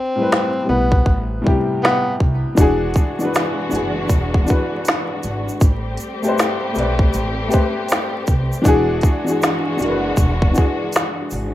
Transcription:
Already playing: C4
0.16 A2 G3
0.20 C4 B4
0.32 finger snap, snare
0.63 A2 G3
0.67 B1 B3 B4
0.92 kick
1.06 A1, kick
1.42 A2 G3
1.46 C3 G4, kick
1.83 B3, finger snap, snare
2.20 C2, kick
2.55 E1 E3 G#3 D4 F#4, kick, closed hi-hat, shaker
2.59 F#4 G#4
2.94 kick, closed hi-hat, shaker
3.19 E3 D4, shaker
3.23 F#4 B4
3.34 finger snap, snare, closed hi-hat, shaker
3.69 F#1 E3 D4, shaker
3.73 F#4 G#4, closed hi-hat
4.09 E1, kick, closed hi-hat, shaker
4.34 kick
4.44 E3 D4 F#4, closed hi-hat, shaker
4.50 B4, kick
4.85 finger snap, snare, closed hi-hat, shaker
5.23 G#1, closed hi-hat, shaker
5.49 shaker
5.61 A1 G3 A3 C4 G4, kick, closed hi-hat, shaker
5.97 closed hi-hat, shaker
6.22 A3 G4, shaker
6.26 B4 C5
6.38 finger snap, snare, closed hi-hat, shaker
6.73 B1 A3 G4, shaker
6.77 B4 D5, closed hi-hat
6.99 kick
7.13 A1, closed hi-hat, shaker
7.48 A3 G4 B4, shaker
7.52 C5, kick, closed hi-hat
7.89 finger snap, snare, closed hi-hat, shaker
8.27 C2, kick, closed hi-hat, shaker
8.53 shaker
8.62 E3 D4, kick, shaker
8.66 E1 E3 G#3 D4 F#4 G#4, closed hi-hat
9.01 kick, closed hi-hat, shaker
9.24 E3 D4, shaker
9.28 F#4 G#4
9.42 finger snap, snare, closed hi-hat, shaker
9.77 F#1 E3 D4, shaker
9.81 F#4 A#4, closed hi-hat
9.90 B4
10.17 E1, kick, closed hi-hat, shaker
10.42 kick
10.51 E3 D4, shaker
10.56 F#4 G#4, kick, closed hi-hat
10.92 finger snap, snare, closed hi-hat, shaker
11.31 G#1, open hi-hat, shaker

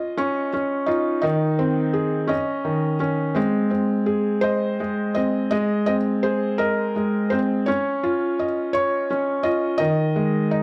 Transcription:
Already playing: F4 D#5
0.17 C#4 C#6
0.54 C#4
0.86 D#4 F4
1.22 D#3 D#4
1.59 C4
1.93 G#4
2.27 C#4 D#5
2.65 D#3
3.00 C#4
3.35 G#3 C4
3.71 C4
4.06 G#4
4.41 C5 D#5
4.80 G#3
5.15 C4 D#5
5.51 G#3 D#5
5.86 C4 D#5
6.23 G#4 C5
6.58 A#4 D#5
6.96 G#3
7.30 C4 C5
7.66 C#4 C#5
8.03 F4
8.39 D#5
8.73 C#5 C#6
9.11 C#4
9.43 F4 D#5
9.78 D#3 D#5
10.16 G#3
10.51 D#4

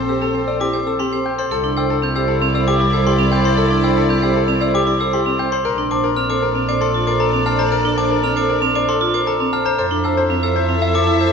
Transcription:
Already playing: A#1 A4 C5
0.05 C4 G4 E6
0.22 C4 A4
0.32 C4 C5
0.47 D5 E6
0.58 C4 E4 G4 D6
0.73 C5
0.85 C4 A4 E6
0.99 C4 G4 C6
1.12 C4 C5
1.25 G5 G6
1.38 A4 C5 C6
1.51 C2 E4 A4 D5
1.64 D4
1.77 C5 G5 E6
1.90 A4
2.02 C4 G6
2.15 G4 C5 E6
2.28 A4
2.42 C4
2.54 C5 D5 E6
2.68 G4 D6
2.80 E4
2.93 A4 C5 E6
3.06 G4 C6
3.18 C4
3.32 C5 G5 G6
3.44 C5 C6
3.57 A4
3.70 D4
3.83 C5 G5 E6
3.97 A4
4.09 C4 G6
4.22 G4 C5 E6
4.36 A4
4.48 C4
4.61 C5 D5 E6
4.74 G4 D6
4.87 E4
5.00 A4 C5 E6
5.13 G4 C6
5.26 C4
5.39 C5 G5 G6
5.52 C5 C6
5.65 A#1 D4 A4 A#4 D5
5.78 D4
5.91 C5 A5 D6
6.04 A#4
6.17 C4 F6
6.29 A4 C5 D6
6.42 A#4
6.55 C4
6.68 C5 D5 D6
6.81 A4 C6
6.94 F4
7.07 A#4 C5 D6
7.20 A4 A#5
7.33 C4
7.46 C5 A5 F6
7.59 C5 A#5
7.72 A#4
7.85 D4
7.98 C5 A5 D6
8.11 A#4
8.23 C4 F6
8.36 A4 C5 D6
8.49 A#4
8.62 C4
8.75 C5 D5 D6
8.88 A4 C6
9.01 F4
9.14 A#4 C5 D6
9.27 A4 A#5
9.40 C4
9.53 C5 A5 F6
9.65 C5 A#5
9.78 F2 E4 A4 C5 E5
9.91 D4
10.04 C5 A5 E6
10.17 C5
10.30 C4
10.43 A4 C5 E6
10.56 C5
10.69 C4
10.82 C5 E5 E6
10.94 A4 D6
11.07 E4
11.20 C5 E6

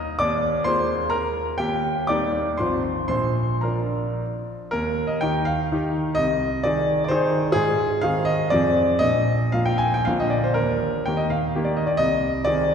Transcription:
Already playing: G3 A#3 D#4 D#5 D#6
0.19 D#2 D5 D6
0.64 G#3 A#3 F4 C5 C6
1.10 A#4 A#5
1.58 D#2 G4 G5
2.07 G3 A#3 D#4 D5 D6
2.57 G#1 F3 C4 F4 C5 C6
3.08 A#1 C5 C6
3.61 F3 D4 F4 A#4 A#5
4.71 D#2 A#4
5.07 D#5
5.21 D#3 D#4 G4 G5
5.45 F5
5.72 D#3 D#4 G4
6.15 C2 D#5
6.63 D#3 D#4 G#4 D5
7.04 D5
7.08 D#3 D#4 G#4 C5
7.52 G#2 G#4
8.01 D#3 C4 G#4 F5
8.25 D#5
8.50 F2 F3 C4 G#4 D5
8.99 A#1 D#5
9.52 F3 A#3 F4 F5
9.66 G5
9.78 G#5
9.94 G5
10.05 A#1 D3 A#3 F4 F5
10.20 D#5
10.30 D5
10.44 C5
10.54 D#2 A#4
11.06 D#3 A#3 G4 G5
11.17 D#5
11.30 F5
11.55 D#3 A#3 G4
11.65 D5
11.77 D#5
11.87 D5
11.97 C2 D#5
12.45 D#3 C4 G#4 D5

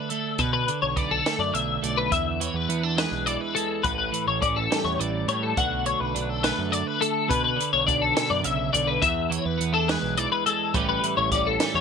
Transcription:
Already playing: D3 D4
0.09 A3 A4, closed hi-hat
0.38 B2 B4, kick, closed hi-hat
0.53 B4
0.68 D3, closed hi-hat
0.82 B1 C#5
0.96 B1 B3 D5, kick, closed hi-hat
1.11 D4 A4
1.26 A3, snare, closed hi-hat
1.39 F#2 D5
1.53 B1 D3 E5, closed hi-hat
1.82 B1 A3 D5, closed hi-hat
1.98 B4
2.10 E2 E5, kick, closed hi-hat
2.40 E3 C#5, closed hi-hat
2.54 E2 B4
2.69 E2 B3, closed hi-hat
2.83 D4 A4
2.97 G#3 B4, snare, closed hi-hat
3.12 B1
3.26 E3 D5, closed hi-hat
3.41 B4
3.55 G#3 A4, closed hi-hat
3.84 A1 A2 B4, kick, closed hi-hat
3.98 B4
4.12 E3, closed hi-hat
4.27 A1 C#5
4.42 A1 C#4 D5, kick, closed hi-hat
4.56 A4
4.70 G3, snare, closed hi-hat
4.84 E2 C#5
4.99 A1 E3 D5, closed hi-hat
5.28 A2 G3 C#5, closed hi-hat
5.43 A4
5.57 B1 B2 D3 A3 D4 F#4 F#5, kick, closed hi-hat
5.85 D3 C#5, closed hi-hat
6.00 B1 B4
6.15 B1 D4, closed hi-hat
6.29 A4
6.43 A3 B4, snare, closed hi-hat
6.59 F#2
6.70 D3 D5, closed hi-hat
6.87 B4
7.01 A3 A4, closed hi-hat
7.28 B2 B4, kick, closed hi-hat
7.44 B4
7.56 D3
7.61 closed hi-hat
7.73 B1 C#5
7.87 B1 D4 D5, kick, closed hi-hat
8.02 A4
8.15 B2, snare, closed hi-hat
8.30 F#2 D5
8.43 B1 C#3 E5, closed hi-hat
8.73 B1 D3 D5, closed hi-hat
8.87 B4
9.02 E2 E5, kick, closed hi-hat
9.30 E3 C#5, closed hi-hat
9.45 E2 B4
9.58 E2 B3, closed hi-hat
9.74 D4 A4
9.88 G#3 B4, snare, closed hi-hat
10.03 B1
10.17 E3 D5, closed hi-hat
10.32 B4
10.46 G#3 A4, closed hi-hat
10.74 A1 A2 E3 G3 C#4 G4 B4, kick, closed hi-hat
10.89 B4
11.04 E3, closed hi-hat
11.17 A1 C#5
11.32 A1 C#4 D5, kick, closed hi-hat
11.47 A4
11.60 G3, snare, closed hi-hat
11.74 E2 C#5

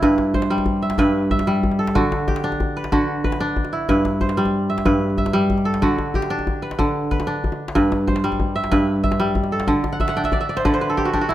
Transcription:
Already playing: D4 E4
0.02 G2 B4, djembe bass
0.18 djembe slap, djembe tone
0.34 C5, djembe bass
0.42 djembe slap
0.50 G3
0.58 djembe tone
0.66 djembe bass
0.82 E5
0.90 djembe slap
0.98 G2 B4, djembe tone, djembe bass
1.23 djembe slap
1.31 E5, djembe slap, djembe bass
1.39 djembe slap, djembe tone
1.47 G3
1.55 djembe slap
1.63 djembe bass
1.71 djembe tone
1.79 A4
1.87 djembe slap
1.95 D3 F#4, djembe bass
2.12 djembe slap, djembe tone
2.20 djembe slap
2.28 G4, djembe slap, djembe bass
2.36 djembe slap
2.44 D4, djembe slap
2.52 djembe slap, djembe tone
2.60 djembe bass
2.77 B4
2.84 djembe slap
2.92 D3 F#4, djembe slap, djembe tone, djembe bass
3.24 B4, djembe bass
3.32 djembe slap, djembe tone
3.40 D4, djembe slap
3.56 djembe slap, djembe bass
3.65 djembe tone
3.73 E4
3.89 G2 B4, djembe bass
4.05 djembe slap, djembe tone
4.21 C5, djembe bass
4.29 djembe slap
4.37 G3
4.45 djembe tone
4.70 E5
4.78 djembe slap
4.85 G2 B4, djembe tone, djembe bass
5.10 djembe slap
5.18 E5, djembe slap, djembe bass
5.26 djembe slap, djembe tone
5.33 G3
5.42 djembe slap
5.50 djembe bass
5.58 djembe tone
5.65 A4
5.74 djembe slap
5.82 D3 F#4, djembe bass
5.98 djembe slap, djembe tone
6.14 G4, djembe bass
6.22 djembe slap
6.30 D4
6.39 djembe tone
6.47 djembe bass
6.62 B4
6.71 djembe slap
6.79 D3, djembe tone, djembe bass
7.04 djembe slap
7.11 B4, djembe slap, djembe bass
7.20 djembe slap, djembe tone
7.27 D4
7.36 djembe slap
7.44 djembe bass
7.52 djembe tone
7.68 djembe slap
7.75 G2 B4, djembe bass
7.92 djembe slap, djembe tone
8.07 C5, djembe bass
8.16 djembe slap
8.24 G3
8.32 djembe tone
8.40 djembe bass
8.56 E5
8.64 djembe slap
8.71 G2 B4, djembe tone, djembe bass
8.96 djembe slap
9.04 E5, djembe slap, djembe bass
9.11 djembe slap, djembe tone
9.20 G3
9.28 djembe slap
9.35 djembe bass
9.44 djembe tone
9.52 A4
9.60 djembe slap
9.67 D3, djembe bass
9.84 djembe slap, djembe tone
9.92 F#5, djembe slap
10.00 E5, djembe slap, djembe bass
10.08 F#5, djembe slap
10.16 D4 G5, djembe slap
10.24 E5, djembe slap, djembe tone
10.32 D5, djembe bass
10.41 E5, djembe slap
10.49 D5, djembe slap
10.57 C5, djembe slap
10.65 D3 B4, djembe tone, djembe bass
10.73 C5, djembe slap
10.81 B4
10.90 A4
10.97 G4, djembe bass
11.05 F#4
11.13 D4 G4, djembe bass
11.21 F#4
11.29 E4, djembe slap

